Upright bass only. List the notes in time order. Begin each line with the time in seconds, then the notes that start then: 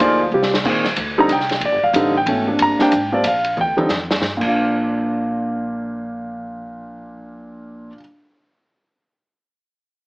0.00 D2
0.32 C2
0.64 A#1
0.97 D2
1.28 C2
1.60 A#1
1.71 G1
1.83 D1
1.93 A1
2.26 G#1
2.59 G1
2.79 muted upright bass stroke
2.92 G#1
3.25 A#1
3.57 D2
3.89 F2
4.21 G2
4.41 A#1